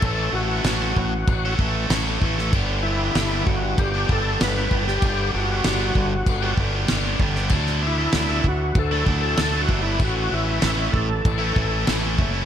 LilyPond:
<<
  \new Staff \with { instrumentName = "Tonewheel organ" } { \time 4/4 \key a \mixolydian \tempo 4 = 96 a'8 fis'2 r4. | r8 e'4 fis'8 g'8 a'8 b'8. g'16~ | g'8 fis'2 r4. | r8 e'4 fis'8 \tuplet 3/2 { a'8. r16 a'8 a'8 fis'8 e'8 } |
fis'8 e'4 a'4. r4 | }
  \new Staff \with { instrumentName = "Distorted electric guitar" } { \time 4/4 \key a \mixolydian <a, e a cis' a'>8 <e a cis' a'>16 <a cis' a'>16 <a, e a cis' a'>16 <a cis' a'>8. r16 <a cis' a'>16 <e a cis' a'>8 <a, e a cis' a'>16 <a cis' a'>16 <e a cis' a'>16 <a cis' a'>16 | <g, d g b d' g'>8 <g b d' g'>16 <g b d' g'>16 <g, d g b d' g'>16 <g b d' g'>8. r16 <g b d' g'>16 <g b d' g'>8 <g, d g b d' g'>16 <g b d' g'>16 <g b d' g'>16 <g b d' g'>16 | <g, d g b d' g'>8 <g b d' g'>16 <g b d' g'>16 <g, d g b d' g'>16 <g b d' g'>8. r16 <g b d' g'>16 <g b d' g'>8 <g, d g b d' g'>16 <g b d' g'>16 <g b d' g'>16 <g b d' g'>16 | <d a d' e'>8 <d a d' e'>16 <a d' e'>16 <d a d' e'>16 <a d' e'>8. r16 <a d' e'>16 <d a d' e'>8 <d a d' e'>16 <a d' e'>16 <d a d' e'>16 <a d' e'>16 |
<a, e a cis' e'>8 <e a cis' e'>16 <a cis' e'>16 <a, e a cis' e'>16 <a cis' e'>8. r16 <a cis' e'>16 <e a cis' e'>8 <a, e a cis' e'>16 <a cis' e'>16 <e a cis' e'>16 <a cis' e'>16 | }
  \new Staff \with { instrumentName = "Fingered electric bass" } { \clef bass \time 4/4 \key a \mixolydian a,,8 a,,8 a,,8 a,,8 a,,8 a,,8 a,,8 a,,8 | g,,4 g,,8 g,,8 g,,8 g,,8 g,,8 g,,8 | g,,8 g,,8 g,,8 g,,8 g,,8 g,,8 g,,8 g,,8 | d,4 d,8 d,8 d,8 d,8 d,8 g,,8 |
a,,8 a,,8 a,,8 a,,8 a,,8 a,,8 a,,8 fis,,8 | }
  \new DrumStaff \with { instrumentName = "Drums" } \drummode { \time 4/4 <cymc bd>4 <cymc sn>8 bd8 <cymc bd>8 bd8 <cymc sn>8 bd16 sn16 | <cymc bd>4 <cymc sn>8 bd8 <cymc bd>8 bd8 <cymc sn>8 bd16 sn16 | <cymc bd>4 <cymc sn>8 bd8 <cymc bd>8 bd8 <cymc sn>8 bd16 sn16 | <cymc bd>16 sn8. <cymc sn>8 bd8 <cymc bd>8 bd8 <cymc sn>8 bd8 |
<cymc bd>4 <cymc sn>8 bd8 <cymc bd>8 bd8 <cymc sn>8 bd8 | }
>>